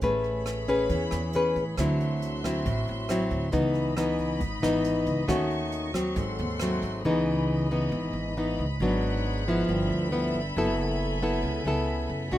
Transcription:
0.01 0.86 A1 loud
0.01 0.88 A3 medium
0.01 0.65 C#4 medium
0.01 1.77 G#4 medium
0.01 0.65 G#4 medium
0.01 0.65 B4 medium
0.01 1.76 C#5 medium
0.01 1.77 B5 medium
0.01 kick medium
0.01 closed hi-hat soft
0.24 closed hi-hat soft
0.46 cross-stick medium
0.46 closed hi-hat soft
0.68 1.31 C#4 medium
0.68 1.31 G#4 medium
0.68 1.31 B4 medium
0.68 kick soft
0.68 closed hi-hat soft
0.89 1.10 E2 medium
0.89 1.76 E3 medium
0.89 kick medium
0.89 closed hi-hat soft
1.11 1.53 E2 loud
1.11 cross-stick medium
1.11 closed hi-hat soft
1.33 1.63 C#4 medium
1.33 1.63 G#4 medium
1.33 1.63 B4 medium
1.33 closed hi-hat soft
1.56 1.76 A1 medium
1.56 kick soft
1.56 closed hi-hat soft
1.78 2.62 D2 loud
1.78 2.64 D3 medium
1.78 2.41 F#3 medium
1.78 2.41 C4 medium
1.78 2.41 E4 medium
1.78 3.53 F#4 medium
1.78 3.52 E5 medium
1.78 3.52 C6 medium
1.78 kick medium
1.78 cross-stick medium
1.78 closed hi-hat soft
2.00 closed hi-hat soft
2.22 closed hi-hat soft
2.44 3.06 F#3 medium
2.44 3.07 C4 medium
2.44 3.07 E4 medium
2.44 kick soft
2.44 cross-stick medium
2.44 closed hi-hat soft
2.66 2.86 A1 medium
2.66 3.51 A2 medium
2.66 kick medium
2.66 closed hi-hat soft
2.87 3.29 A1 medium
2.87 closed hi-hat soft
3.09 3.50 F#3 medium
3.09 3.50 C4 medium
3.09 3.51 E4 medium
3.09 cross-stick medium
3.09 closed hi-hat soft
3.31 3.52 D2 medium
3.31 kick soft
3.31 closed hi-hat soft
3.52 4.37 C#2 loud
3.52 4.38 C#3 medium
3.52 3.93 E3 medium
3.52 3.93 B3 medium
3.52 3.94 D#4 medium
3.52 6.15 D#5 medium
3.52 5.28 B5 medium
3.52 kick medium
3.52 closed hi-hat soft
3.75 closed hi-hat soft
3.97 4.41 E3 medium
3.97 4.41 B3 medium
3.97 4.41 D#4 medium
3.97 cross-stick medium
3.97 closed hi-hat soft
4.19 kick soft
4.19 closed hi-hat soft
4.40 4.61 G#1 medium
4.40 5.26 G#2 medium
4.40 kick medium
4.40 closed hi-hat soft
4.63 5.04 G#1 medium
4.63 5.25 E3 medium
4.63 5.25 B3 medium
4.63 5.26 D#4 medium
4.63 cross-stick medium
4.63 closed hi-hat soft
4.85 closed hi-hat soft
5.06 5.27 C#2 medium
5.06 kick soft
5.06 closed hi-hat soft
5.28 6.13 D#2 loud
5.28 5.94 D#3 medium
5.28 5.91 A3 medium
5.28 5.91 C#4 medium
5.28 6.16 F#4 medium
5.28 5.91 F#4 medium
5.28 6.16 C#6 medium
5.28 kick medium
5.28 cross-stick medium
5.28 closed hi-hat soft
5.51 closed hi-hat soft
5.72 closed hi-hat soft
5.94 6.57 F#3 medium
5.94 6.58 C4 medium
5.94 kick soft
5.94 cross-stick medium
5.94 closed hi-hat soft
6.15 6.37 G#1 loud
6.15 7.02 G#2 medium
6.15 7.03 A4 medium
6.15 7.03 F#5 medium
6.15 7.03 C6 medium
6.15 kick medium
6.15 closed hi-hat soft
6.38 6.80 D#2 loud
6.38 closed hi-hat soft
6.60 7.04 F#3 medium
6.60 7.04 A3 soft
6.60 7.04 C4 medium
6.60 cross-stick medium
6.60 closed hi-hat soft
6.82 7.03 G#1 medium
6.82 kick soft
6.82 closed hi-hat soft
7.04 7.88 C#2 loud
7.04 7.91 C#3 medium
7.04 7.67 E3 medium
7.04 7.67 B3 medium
7.04 7.68 D#4 medium
7.04 8.78 D#5 medium
7.04 12.38 B5 medium
7.71 8.33 E3 medium
7.71 8.33 B3 medium
7.71 8.33 D#4 medium
7.92 8.13 G#1 loud
7.92 8.78 G#2 medium
8.13 8.54 G#1 medium
8.37 8.65 E3 medium
8.37 8.65 B3 medium
8.37 8.65 D#4 medium
8.59 8.79 C#2 medium
8.80 9.64 G#1 loud
8.80 9.67 G#2 medium
8.80 9.43 F#3 medium
8.80 9.44 B3 medium
8.80 9.44 D4 medium
8.80 9.68 G#4 medium
8.80 9.68 F#5 medium
9.48 10.09 F3 medium
9.48 10.10 B3 medium
9.48 10.10 E4 medium
9.68 9.89 G1 medium
9.68 10.54 G2 medium
9.68 12.38 A4 medium
9.68 12.29 E5 medium
9.68 10.55 G5 medium
9.90 10.31 D2 medium
10.12 10.40 F3 medium
10.12 10.40 B3 medium
10.12 10.41 E4 medium
10.34 10.54 G1 medium
10.56 11.40 F#1 loud
10.56 11.42 F#3 medium
10.56 11.19 B3 medium
10.56 11.19 E4 medium
10.56 11.19 A4 medium
10.56 12.30 G#5 medium
11.23 11.62 B3 medium
11.23 11.63 E4 medium
11.23 11.63 A4 medium
11.43 11.63 C#2 medium
11.43 12.30 C#3 medium
11.65 12.06 C#2 medium
11.65 12.28 B3 medium
11.65 12.29 E4 medium
11.65 12.29 A4 medium
12.10 12.30 F#2 medium
12.31 12.38 B1 loud
12.31 12.38 B2 medium
12.31 12.38 A3 medium
12.31 12.38 D4 medium
12.31 12.38 F#4 medium
12.31 12.38 D5 medium

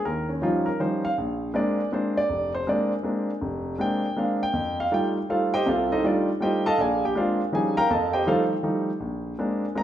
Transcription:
0.05 0.37 D#2 medium
0.05 0.29 A#4 medium
0.29 0.41 C#4 medium
0.42 0.68 F3 medium
0.42 0.68 G3 soft
0.42 0.68 C#4 medium
0.42 0.68 D#4 medium
0.42 0.66 F4 medium
0.66 0.79 A#4 medium
0.80 1.05 F3 soft
0.80 1.05 G3 soft
0.80 1.05 C#4 soft
0.80 1.06 D#4 medium
0.80 1.04 C5 medium
1.05 1.12 F5 medium
1.18 1.50 A#1 medium
1.54 1.80 G#3 medium
1.54 1.80 A#3 medium
1.54 1.80 C4 medium
1.54 1.80 D4 medium
1.54 1.90 D5 medium
1.92 2.18 G#3 medium
1.92 2.18 A#3 soft
1.92 2.18 C4 medium
1.92 2.18 D4 medium
1.92 2.16 C5 medium
2.17 2.52 D5 medium
2.30 2.62 F1 medium
2.55 2.67 C5 medium
2.67 2.92 G#3 medium
2.67 2.93 A#3 medium
2.67 2.93 C4 medium
2.67 2.93 D4 medium
2.67 2.91 D5 medium
3.03 3.29 G#3 medium
3.03 3.30 A#3 soft
3.03 3.30 C4 soft
3.03 3.30 D4 medium
3.42 3.74 F1 medium
3.78 4.04 G#3 medium
3.78 4.04 A#3 soft
3.78 4.05 C4 medium
3.78 4.05 D4 medium
3.78 4.15 G5 medium
4.17 4.42 G#3 medium
4.17 4.42 A#3 soft
4.17 4.42 C4 soft
4.17 4.42 D4 medium
4.17 4.41 F5 medium
4.43 4.76 G5 medium
4.53 4.86 F2 medium
4.80 4.92 F5 medium
4.91 5.17 G3 medium
4.91 5.17 A3 medium
4.91 5.17 D#4 medium
4.91 5.17 F4 medium
4.91 5.07 G5 medium
5.29 5.54 G3 medium
5.29 5.54 A3 soft
5.29 5.54 D#4 soft
5.29 5.54 F4 medium
5.29 5.53 A4 medium
5.29 5.52 C5 medium
5.29 5.53 F5 medium
5.54 5.66 G4 medium
5.54 5.66 C5 medium
5.54 5.66 D#5 medium
5.54 5.66 G5 loud
5.66 5.98 C2 medium
5.66 5.98 C3 medium
5.66 5.91 F4 medium
5.66 5.91 A4 medium
5.66 5.91 C5 medium
5.66 5.90 F5 medium
5.92 6.02 D#4 medium
5.92 6.04 A4 medium
5.92 6.04 C5 medium
5.92 6.04 D#5 medium
6.04 6.29 G3 medium
6.04 6.29 A3 medium
6.04 6.28 D4 medium
6.04 6.29 D#4 soft
6.04 6.29 F4 medium
6.04 6.28 D5 medium
6.40 6.66 G3 medium
6.40 6.66 A3 soft
6.40 6.66 D#4 soft
6.40 6.66 F4 medium
6.40 6.65 G4 medium
6.40 6.65 C5 medium
6.40 6.65 D#5 medium
6.40 6.65 G5 medium
6.66 6.78 A4 medium
6.66 6.78 D#5 medium
6.66 6.78 F5 medium
6.66 6.78 A5 loud
6.78 7.10 A#1 medium
6.78 7.03 G#4 medium
6.78 7.03 D5 medium
6.78 7.03 F5 medium
6.78 7.03 G#5 medium
7.05 7.16 G4 medium
7.05 7.16 G5 medium
7.15 7.41 G#3 medium
7.15 7.40 A#3 medium
7.15 7.41 C4 soft
7.15 7.41 D4 medium
7.15 7.40 F4 medium
7.15 7.40 C5 medium
7.15 7.40 D5 medium
7.15 7.40 F5 medium
7.52 7.78 F3 medium
7.52 7.78 G3 medium
7.52 7.78 C#4 medium
7.52 7.78 D#4 medium
7.52 7.77 G#4 medium
7.52 7.77 G#5 medium
7.77 7.90 A#4 medium
7.77 7.89 F5 medium
7.77 7.90 G5 medium
7.77 7.90 A#5 loud
7.90 8.22 F2 medium
7.90 8.14 A4 medium
7.90 8.12 D#5 medium
7.90 8.13 F5 medium
7.90 8.13 A5 medium
8.13 8.27 G4 medium
8.13 8.27 C5 medium
8.13 8.27 D#5 medium
8.13 8.26 G5 medium
8.26 8.52 F3 medium
8.26 8.52 G3 medium
8.26 8.52 A3 medium
8.26 8.52 D#4 medium
8.26 8.43 F4 medium
8.26 8.43 A4 medium
8.26 8.43 C5 medium
8.26 8.42 F5 medium
8.63 8.89 F3 medium
8.63 8.89 G3 medium
8.63 8.89 A3 soft
8.63 8.89 D#4 medium
9.00 9.33 A#1 medium
9.39 9.64 G#3 medium
9.39 9.64 A#3 medium
9.39 9.64 C4 soft
9.39 9.64 D4 medium
9.75 9.83 G#3 medium
9.75 9.83 A#3 soft
9.75 9.83 C4 soft
9.75 9.83 D4 medium
9.75 9.83 A#5 medium

